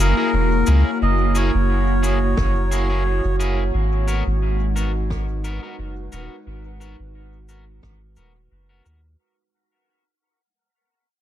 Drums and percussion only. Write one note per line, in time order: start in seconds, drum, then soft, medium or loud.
0.00 cabasa medium
0.66 cabasa medium
1.35 cabasa medium
2.04 cabasa medium
2.37 kick loud
2.37 cross-stick medium
2.72 cabasa medium
3.40 cabasa medium
4.08 cabasa medium
4.77 cabasa medium
5.10 kick loud
5.10 cross-stick medium
5.44 cabasa medium
6.12 cabasa medium
6.81 cabasa medium
7.49 cabasa medium
7.83 kick medium
7.83 cross-stick medium
8.16 cabasa medium
8.86 cabasa medium